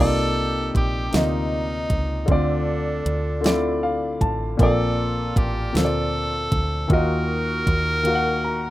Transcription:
Already playing: C3 G3 A#3 D#4 G4
0.00 C2 D#4 F4 A4 D5
0.75 A#1 G4, kick, closed hi-hat
1.11 D2 C3 A#3 D#4 F4, snare, closed hi-hat
1.16 D#4 D#5
1.90 C#2, kick, closed hi-hat
2.26 D2 D3 A3 C4 D4 F4 A4, kick, closed hi-hat
2.30 D4 F4 D5
3.06 D2, closed hi-hat
3.41 D3 A3 C4 E4, closed hi-hat
3.46 D5, snare
3.52 F4
3.83 F5
4.21 A1 A5, kick, closed hi-hat
4.57 A#1 A#2 A#3 C4 D4 F4 A4, kick, closed hi-hat
4.62 A4 D5
5.36 A1 G4, kick, closed hi-hat
5.73 D2 A#2 A#3 C4 A4, snare, closed hi-hat
5.79 C5
5.85 D5
6.52 D2, kick, closed hi-hat
6.88 D#2 D#3 A#3 D#4 F4 F#4, kick, closed hi-hat
6.92 F#4 A#4 D#5
7.67 D#2, kick, closed hi-hat
8.03 D#3 A#3 F#4 F5, closed hi-hat
8.09 F5
8.15 F#5
8.44 A#5

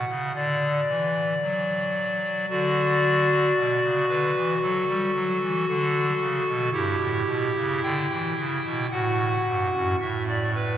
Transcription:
Already playing: F#5
0.08 C#3
0.35 D3 D5
0.88 E3
1.42 F#3
2.49 D3 F#4 D5
3.57 B2
3.83 C#3
4.09 D3 B4
4.35 E3
4.62 F#3 A4
4.88 G3
5.15 F#3
5.42 E3
5.68 D3 A4
6.21 C#3
6.47 B2
6.72 G2 E4 G4
6.99 A2
7.27 B2
7.56 C#3
7.83 D3 G5
8.11 E3
8.37 C#3
8.64 B2
8.91 A2 F#4 F#5
9.46 G2
9.72 F#2
10.00 A2 E5
10.28 D5
10.55 B4

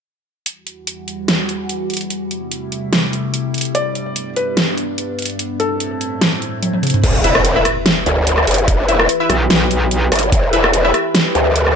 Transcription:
0.46 E2 E3 G3 F#4, closed hi-hat
0.67 closed hi-hat
0.87 closed hi-hat
1.08 closed hi-hat
1.28 snare, closed hi-hat
1.49 closed hi-hat
1.69 closed hi-hat
1.90 closed hi-hat
1.94 closed hi-hat
1.97 closed hi-hat
2.01 closed hi-hat
2.10 C3 G3 A3 E4, closed hi-hat
2.31 closed hi-hat
2.52 closed hi-hat
2.72 closed hi-hat
2.93 snare, closed hi-hat
3.13 closed hi-hat
3.34 closed hi-hat
3.54 closed hi-hat
3.58 closed hi-hat
3.61 closed hi-hat
3.65 closed hi-hat
3.75 G2 B3 D4 D5, closed hi-hat
3.95 closed hi-hat
4.16 closed hi-hat
4.36 B4, closed hi-hat
4.57 snare, closed hi-hat
4.77 closed hi-hat
4.98 closed hi-hat
5.19 closed hi-hat
5.22 closed hi-hat
5.25 closed hi-hat
5.30 closed hi-hat
5.39 A2 A3 C4 E4, closed hi-hat
5.60 A4, closed hi-hat
5.80 closed hi-hat
6.01 closed hi-hat
6.21 snare, closed hi-hat
6.42 closed hi-hat
6.63 closed hi-hat, high tom
6.73 high tom
6.83 closed hi-hat, mid tom
6.87 closed hi-hat
6.90 closed hi-hat
6.94 closed hi-hat, mid tom
7.04 E1 E3 E4 G4 B4, kick, closed hi-hat, crash, impact
7.24 E4 B4 E5, closed hi-hat
7.35 cross-stick
7.45 closed hi-hat
7.56 E4 B4 E5
7.65 cross-stick, closed hi-hat
7.86 snare, closed hi-hat
8.06 D2, closed hi-hat
8.27 closed hi-hat
8.38 cross-stick
8.47 F#1, closed hi-hat, open hi-hat
8.54 closed hi-hat
8.58 closed hi-hat
8.68 kick, closed hi-hat
8.88 F1 E4 B4 E5, closed hi-hat
8.99 cross-stick
9.09 closed hi-hat
9.20 E4 B4 E5
9.30 B1, cross-stick, closed hi-hat
9.50 B1, snare, closed hi-hat
9.71 closed hi-hat
9.91 closed hi-hat
10.12 G1, cross-stick, closed hi-hat, open hi-hat
10.19 closed hi-hat
10.23 closed hi-hat
10.32 E1, kick, closed hi-hat
10.53 E4 B4 E5, closed hi-hat
10.64 cross-stick
10.73 closed hi-hat
10.84 E4 B4 E5
10.94 cross-stick, closed hi-hat
11.15 snare, closed hi-hat
11.35 D2, closed hi-hat
11.56 closed hi-hat
11.67 cross-stick

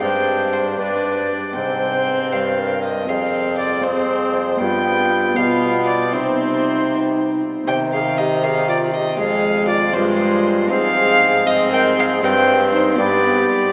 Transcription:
Already playing: C4
0.00 G2 D4 G4 C5 G5
0.53 C5
0.76 G2 D4 G4 B4
0.80 D5
1.52 G#2 C3 C4 D#4 C5 G5
1.58 C5
2.33 G2 F5
2.59 A#4
2.84 D#5
3.05 F2 C4 F4 G#4
3.09 F2 C4 F5
3.59 D5
3.81 C4 F4 G#4 C5
4.56 G2 B3 F4 G4
4.60 B3 F4 G5
5.33 B2 B3 F4 G4 F5
5.37 B2 F4
5.87 D5
6.10 C3 C4 D#4 G4 C5
6.14 C3
7.64 C3 D#3 C4 D#4 G4 G5
7.68 C3 C5 D5
7.93 G#4 F5
8.18 G4 D#5
8.44 G#4 A#4 F5
8.68 F4 D5
8.93 G4 D#5
9.16 F2 G#3 C4 F4 G#4 F5
9.20 F2
9.68 F4 D5
9.91 G2 F3 G#3 C4 F4 C5
9.96 G2
10.67 C4 D#4 F5
10.71 G#2 C4 G#4
11.46 C4 G#4 D#5
11.72 A#4 G5
11.97 G#4 F5
12.20 G2 C4 D4 G4 C5
12.24 G2 G5
12.73 D#4 C5
12.95 G2 B3 D4 G4 D5
13.00 B3

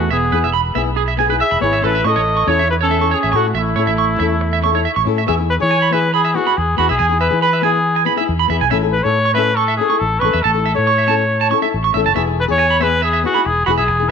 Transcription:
Already playing: A3
0.10 E1 B3 G#4 E5
0.31 E2 B3 E4 G#4 B4
0.44 E1 E5
0.54 B5
0.75 B1 B3 E4 G#4 E5
0.96 G#4
1.08 E5
1.17 B3 G#4 G#5
1.29 E4 G#4 B4
1.40 G#4 E5
1.51 E1 B5
1.60 G#1 B3 E4 G#4 C#5
1.73 E5
1.81 A1 C#4 E4 A4 B4
1.95 E5
2.04 A2 C#4 E4 A4 D#5 C#6
2.16 A1 C#5
2.37 C#6
2.46 E2 C#4 E4 A4 C#5
2.59 E5
2.71 E4 B4
2.81 C#4 A4 C#5
2.88 C#4 E4 A4 E5
3.01 E4 A4 C#6
3.11 C#4 G#4 C#5
3.23 A1 E5
3.33 A2 A3 C#4 E4 F#4 A4 C#6
3.48 A3 F#4
3.55 A1 A3 E4 E5
3.76 A2 C#4 E4 A4 C#5
3.87 A1 E5
3.98 C#6
4.18 E2 C#4 E4 A4 E5
4.41 muted clean electric guitar stroke
4.53 E5
4.62 C#4 E4 A4 C#6
4.72 E4 A4 C#5
4.85 E5
4.96 A1 C#6
5.05 A2 C#4 E4 A4
5.18 E5
5.27 E2 B3 E4 G#4 E5
5.40 E4
5.50 B4
5.60 E3 E4 G#4 C#5
5.71 G#5
5.82 B5
5.91 B3 E4 G#4 B4 E5
6.14 G#4 B5
6.25 E5
6.34 B3 E4 F#4 G#4
6.47 G#4 B5, muted nylon-string guitar stroke
6.58 E2 G#4
6.77 E2 B3 E4 F#4 G#4 B5
6.89 B1 G#4 E5
6.99 E2 G#5
7.09 E4 G#4
7.21 B4 E5
7.30 E3 E4 G#4
7.42 B4 B5
7.53 E5
7.62 B3 E4 G#4 G#5
7.96 G#5
8.05 B3 E4 G#4 B5
8.17 E4 G#4 E5
8.29 E2
8.39 B5
8.48 E2 B3 E4 G#4 E5
8.61 B1 G#5
8.71 A1 C#4 E4 A4 E5
8.83 E4 A4
8.92 B4
9.04 A2 A4 C#5
9.08 E4
9.25 C#6
9.34 C#4 E4 A4 B4 E5
9.56 A4 C#6
9.68 E5
9.77 C#4 E4 G#4
9.81 A4
9.89 E4 A4 C#6
9.99 A1 A4
10.20 A1 C#4 B4 C#6
10.25 A4
10.33 E2 E5
10.43 A1 A4 A5
10.54 E4 A4
10.65 E5
10.75 A2 E4 A4 C#5
10.87 C#6
10.98 E5
11.07 C#4 E4 A4 A5
11.41 A5
11.50 C#4 E4 A4 C#6
11.62 E4 A4 E5
11.74 A1
11.84 C#6
11.94 A1 C#4 E4 A4 E5
12.06 F#1 A5
12.15 E1 B3 E4 G#4 E5
12.27 E4 G#4
12.40 B4
12.48 E2 E4 G#4 C#5
12.59 G#5
12.70 B5
12.80 B3 G#4 B4 E5
13.02 G#4 E5
13.13 E5
13.23 B3 E4 F#4 G#4
13.34 E4 G#4 B5
13.46 E1 G#4
13.66 E1 B3 E4 F#4 G#4 B5
13.78 B1 G#4 E5
13.88 E1, muted clean electric guitar stroke
14.00 E4 G#4

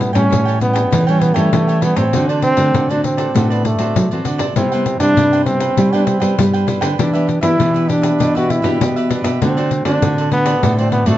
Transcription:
Already playing: A2 G3 B3 C#4 E4
0.00 muted cavaquinho stroke, pandeiro
0.13 A2 G3 C#4 E4 A4 C#5 G5, pandeiro
0.30 A2 E3 E4 A4 C#5 G5, pandeiro
0.45 A4 C#5 G5, pandeiro
0.60 G3 B3 C#4 E4, muted cavaquinho stroke, pandeiro
0.73 A4 C#5 G5, pandeiro
0.91 A2 E3 E4 A4 C#5 G5, pandeiro
1.07 G3 C#4 E4 A4 C#5 G5, pandeiro
1.21 B3, pandeiro
1.34 E3 G3 A3 C#4 E4 A4 C#5 G5, pandeiro
1.53 E3, pandeiro
1.67 A4 C#5 G5, pandeiro
1.81 G3 B3 C#4 E4 A4 C#5 G5, pandeiro
1.96 A2 C4 A4 C#5 G5, pandeiro
2.13 D3 A3 C4 F#4 A4 C5 D5, pandeiro
2.29 D4 A4 C5 D5, pandeiro
2.42 C4, muted cavaquinho stroke, pandeiro
2.57 D3 A3 C4 F#4 A4 C5 D5, pandeiro
2.74 A2 D3 F#4 A4 C5 D5, pandeiro
2.89 A3 C4 D4 F#4 A4 C5 D5, pandeiro
3.03 C4, muted cavaquinho stroke, pandeiro
3.17 A3 C4 F#4 A4 C5 D5, pandeiro
3.34 A2 D3 A3 C4 F#4 A4 C5 D5, pandeiro
3.50 B3 A4 C5 D5, pandeiro
3.65 A3, pandeiro
3.78 A2 A3 C4 F#4 A4 C5 D5, pandeiro
3.96 A2 F#3, pandeiro
4.11 E3 A3 C4 F#4 A4 C5 D5, pandeiro
4.24 D3 F#4 A4 C5 D5, pandeiro
4.38 C3 A4 C5 D5, pandeiro
4.56 C3 G3 B3 C4 E4 B4 C5 G5, pandeiro
4.72 G3 B3 E4 B4 C5 G5, pandeiro
4.86 muted cavaquinho stroke, pandeiro
5.00 C3 G3 B3 D4 E4 B4 C5 G5, pandeiro
5.16 G2 C3 E4 B4 C5 G5, pandeiro
5.32 B4 C5 G5, pandeiro
5.45 G3 B3 C4 E4, muted cavaquinho stroke, pandeiro
5.60 B4 C5 G5, pandeiro
5.77 C3 G3 E4 B4 C5 G5, pandeiro
5.93 G3 B3 D4 E4 B4 C5 G5, pandeiro
6.07 C4, pandeiro
6.20 G3 B3 E4 B4 C5 G5, pandeiro
6.38 G2 G3, pandeiro
6.53 B4 C5 G5, pandeiro
6.67 G3 B3 E4 B4 C5 G5, pandeiro
6.81 D3 B4 C5 G5, pandeiro
6.98 E3 B3 D4 G4 B4 E5, pandeiro
7.13 B3 D4 G4 B4 E5, pandeiro
7.27 muted cavaquinho stroke, pandeiro
7.41 E3 B3 D4 E4 G4 B4 E5, pandeiro
7.58 B2 E3 D4 G4 B4 E5, pandeiro
7.74 G4 B4 E5, pandeiro
7.88 B3 D4 G4, muted cavaquinho stroke, pandeiro
8.02 G4 B4 E5, pandeiro
8.19 B2 E3 D4 G4 B4 E5, pandeiro
8.35 B3 D4 F#4 G4 B4 E5, pandeiro
8.50 E4, pandeiro
8.62 B2 B3 D4 G4 B4 E5, pandeiro
8.81 B2, pandeiro
8.96 G4 B4 E5, pandeiro
9.09 B3 D4 G4 B4 E5, pandeiro
9.24 B2 G4 B4 E5, pandeiro
9.41 D3 A3 C4 F#4 A4 C5 D5, pandeiro
9.57 A3 C4 F#4 A4 C5 D5, pandeiro
9.71 muted cavaquinho stroke, pandeiro
9.85 D3 A3 C4 D4 F#4 A4 C5 D5, pandeiro
10.02 A2 D3 F#4 A4 C5 D5, pandeiro
10.18 A4 C5 D5, pandeiro
10.32 A3 B3 F#4, muted cavaquinho stroke, pandeiro
10.46 A4 C5 D5, pandeiro
10.63 A2 D3 F#4 A4 C5 D5, pandeiro
10.78 A3 C4 F#4 A4 C5 D5, pandeiro
10.92 B3, pandeiro
11.06 A2 A3 C4 F#4 A4 C5 D5, pandeiro

